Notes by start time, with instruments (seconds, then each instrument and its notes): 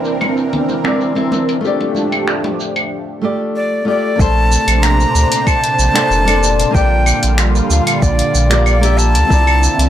Already playing: analog synth pad E3 C4 D4 A#4, nylon-string guitar C4 E4 A#4 D5
0.05 shaker
0.21 closed hi-hat, muted conga, claves, shaker
0.37 shaker
0.53 closed hi-hat, low conga
0.69 muted conga, shaker
0.84 nylon-string guitar C4 E4 A#4 D5, finger snap, closed hi-hat, high conga, shaker
1.01 shaker
1.15 nylon-string guitar C4 E4 A#4 E5, closed hi-hat
1.32 muted conga, high conga, shaker
1.49 closed hi-hat, shaker
1.61 analog synth pad F3 A3 D4 G4, nylon-string guitar A3 F4 G4, shaker
1.67 nylon-string guitar D5
1.81 closed hi-hat, muted conga
1.95 high conga, shaker
2.12 closed hi-hat, claves, shaker
2.28 finger snap, shaker
2.44 closed hi-hat, muted conga
2.60 shaker
2.76 closed hi-hat, claves, shaker
3.21 nylon-string guitar A3 F4 G4 D5
3.56 flute D5
3.85 nylon-string guitar A3 F4 G4 D5, flute D5
4.16 sub bass A#1, analog synth pad A#2 C3 D4 C5, nylon-string guitar A#3 D4, kick
4.20 nylon-string guitar A3 C5, flute A5, shaker
4.52 shaker
4.68 sub bass A#1, closed hi-hat, claves, shaker
4.82 flute A#5, finger snap, shaker
5.00 shaker
5.15 sub bass D2, shaker
5.32 closed hi-hat, shaker
5.47 flute A5, kick, claves, shaker
5.64 closed hi-hat
5.79 sub bass A#1, shaker
5.93 nylon-string guitar A#3 D4 A4 C5, finger snap, closed hi-hat, shaker
6.10 sub bass F1, shaker
6.25 nylon-string guitar A#3 D4 A4 D5, closed hi-hat, claves, shaker
6.43 shaker
6.59 closed hi-hat, shaker
6.71 analog synth pad D3 G3, nylon-string guitar A#3 F4, flute G5, kick
6.75 sub bass A#1, analog synth pad F4, nylon-string guitar G4 D5, shaker
7.06 claves, shaker
7.23 sub bass A#1, closed hi-hat, shaker
7.38 finger snap, shaker
7.55 shaker
7.70 sub bass D2, flute F5, shaker
7.87 closed hi-hat, claves, shaker
8.02 sub bass A#1, flute D5, kick, shaker
8.19 closed hi-hat
8.35 sub bass A#1, shaker
8.50 nylon-string guitar A#3 F4 G4 D5, finger snap, closed hi-hat, shaker
8.65 flute D5, claves, shaker
8.81 nylon-string guitar A#3 F4 G4 E5, closed hi-hat, shaker
8.98 flute A5, shaker
9.15 sub bass D2, closed hi-hat, shaker
9.27 sub bass C2, analog synth pad D3 A#3 C4 E4, nylon-string guitar C4 E4 A#4, kick
9.31 nylon-string guitar D5, shaker
9.47 claves
9.63 shaker
9.78 sub bass C2, closed hi-hat, shaker